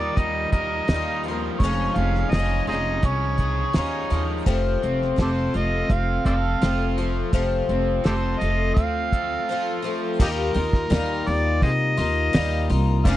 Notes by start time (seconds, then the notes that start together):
Already playing: D#2 D#3 G3 A#3 D#4 F4 A#4 D5
0.17 D#2 G3 D#5, kick, closed hi-hat
0.52 D#2 A#4 D#5, kick, closed hi-hat
0.88 D#2 G3 D#4, snare, closed hi-hat
0.92 A#3 D#4 F4
1.24 F3, closed hi-hat
1.28 A#3 D#4 F4
1.59 F1 F2 F3 C#5, kick, closed hi-hat
1.64 D#3 G#3 C#4 D#4 F4
1.95 F1 C#4 F5, closed hi-hat
2.15 snare
2.31 F1 G#4 D#5, snare, closed hi-hat
2.35 G#3 C#4 D#4
2.39 F4
2.67 F1 D#4 F4 G#4 C5 D#5, closed hi-hat
2.72 G#3 C#4 D#4
3.03 C2 C#4 C#5, kick, closed hi-hat
3.38 G#4, kick, closed hi-hat
3.73 D#2 G#3 C#4 D#4 C#5, snare, closed hi-hat
3.78 D#4 F4
4.10 D#2 F3 C#4 D#4 F4, closed hi-hat
4.14 G#3
4.46 F1 F2 C3 F3 A3 C4 F4, kick, closed hi-hat
4.82 F1 C4, closed hi-hat
5.02 snare
5.16 F1 F3 A3 C4 F4 A4, kick, snare, closed hi-hat
5.22 G4 A4 C5
5.54 F1 F3 A3 C4 F4 D#5, closed hi-hat
5.89 F1 C4 F5, kick, closed hi-hat
6.25 F1 A4 C5 D5 F5, kick, closed hi-hat
6.61 F1 F3 A3 C4 F4, snare, closed hi-hat
6.98 F3 A3 C4 F4, closed hi-hat
7.02 F3
7.33 F1 F2 C3 F3 A3 C4 F4, kick, closed hi-hat
7.69 F1 C4, closed hi-hat
8.04 F1 F3 A3 C4 F4 G4 A4 C5, snare, closed hi-hat
8.38 F1 F4 D#5, closed hi-hat
8.43 F3 A3 C4
8.74 D2 C4 F5, kick, closed hi-hat
9.12 A4, kick, closed hi-hat
9.49 F3 A3 C4 F4
9.82 F3 A3 C4 F4
10.20 D#2 D#3 G3 A#3 D#4 F4 G4 A#4, kick, crash
10.54 D#2 A#3 D#4 F4, open hi-hat
10.73 kick, snare
10.90 D#2 G3 A#3 D#4 F4, snare, open hi-hat
11.27 D#2 D5, open hi-hat
11.62 C3 G#4 C5 D#5, kick, open hi-hat
11.97 D#2 A#3 D#4 F4 D#5, open hi-hat
12.33 D#2 G3 A#3 D#4 F4, snare, open hi-hat
12.70 C2 A#3 D#4 F4, open hi-hat
13.05 F1 F2 D#3 G#3 C#4 D#4 F4 C5 D5 F5, kick, open hi-hat